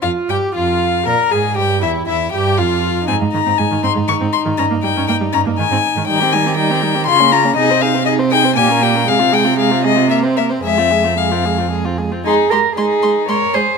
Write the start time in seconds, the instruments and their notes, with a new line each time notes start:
0.02 cello F2, violin F4 F5, viola F4
0.29 cello G2, violin G4 G5, viola G4
0.55 cello F2, violin F4 F5, viola F4
1.05 cello A#2, viola A#4, violin A#4 A#5
1.31 cello G#2, violin G#4 G#5, viola G#4
1.56 cello G2, violin G4 G5, viola G4
1.81 cello E2, violin E4 E5, viola E4
2.07 cello E2, violin E4 E5, viola E4
2.32 cello G2, violin G4 G5, viola G4
2.58 cello F2, viola F4, violin F4 F5
3.07 cello G#2, viola C4, violin D#4 G#5
3.21 cello G#2, viola G#3
3.32 cello G#2, viola D#3, violin A#5
3.46 cello G#2, viola C4
3.58 cello G#2, viola G#3, violin G#5
3.71 cello G#2, viola D#3
3.83 cello G#2, viola C4, violin C6
3.95 cello G#2, viola G#3
4.08 cello G#2, viola D#3, violin C#6
4.20 cello G#2, viola C4
4.33 violin C6
4.46 cello G#2, viola D#3
4.57 cello G2, viola C#4, violin A#5
4.71 cello G2, viola A#3
4.83 cello G2, viola G3, violin G5
4.96 cello G2, viola C#4
5.08 cello G2, viola A#3, violin G5
5.21 cello G2, viola G3
5.33 cello G2, viola C#4, violin A#5
5.46 cello G2, viola A#3
5.58 cello G#2, viola D#3, violin G#5
5.70 cello G#2, viola C4
5.96 cello G#2, viola D#3
6.07 cello D#3, viola G3, violin D#4 G5
6.20 viola C4, violin G4
6.32 viola G3, violin D#4 G#5
6.46 viola C4, violin G4
6.57 viola G3, violin D#4 G5
6.71 viola C4, violin G4
6.82 viola G3, violin D#4
6.95 viola C4, violin G4
7.06 cello C#3, viola C#4, violin F4 C6
7.20 viola A#3, violin C#4
7.32 viola C#4, violin F4 A#5
7.44 viola A#3, violin C#4
7.56 cello C3, viola D#4, violin G#4 D#5
7.70 viola C4, violin C5
7.82 viola D#4, violin G#4 F5
7.94 viola C4, violin C5
8.06 viola D#4, violin G#4 D#5
8.19 viola C4, violin C5
8.32 viola D#4, violin G#4 G5
8.44 viola C4, violin C5
8.56 cello A#2, viola A#3, violin G4 G#5
8.68 viola C#4, violin A#4
8.81 viola A#3, violin G4 G5
8.94 viola C#4, violin A#4
9.07 cello C3, viola G#3, violin G#4 F5
9.19 viola C4, violin F4
9.32 viola G#3, violin G#4 G5
9.44 viola C4, violin F4
9.58 viola G#3, violin G#4 F5
9.71 viola C4, violin F4
9.84 viola G#3, violin G#4 D#5
9.96 viola C4, violin F4
10.09 viola A#3, violin A#4 E5
10.22 viola C4, violin C5
10.35 viola A#3, violin A#4 E5
10.50 viola C4, violin C5
10.63 cello F2, viola G#3, violin G#4 E5
10.78 viola C4, violin F4
10.91 viola G#3, violin G#4
11.04 viola C4, violin F4
11.18 viola G#3, violin G#4 F5
11.31 viola C4, violin F4
11.45 viola G#3, violin G#4
11.58 viola C4, violin F4
11.71 viola G#3, violin G#4
11.85 viola C4, violin F4
11.98 viola G#3, violin G#4
12.11 viola C4, violin F4
12.24 viola G#3, violin D#4 C6, cello G#4
12.50 viola G#3, violin G4 C6, cello A#4
12.76 viola G#3, violin D#4 C6, cello G#4
13.03 viola G#3, violin C6
13.28 viola G#3, violin A#4 C6, cello C#5
13.53 viola G#3, violin G#4 C6, cello C5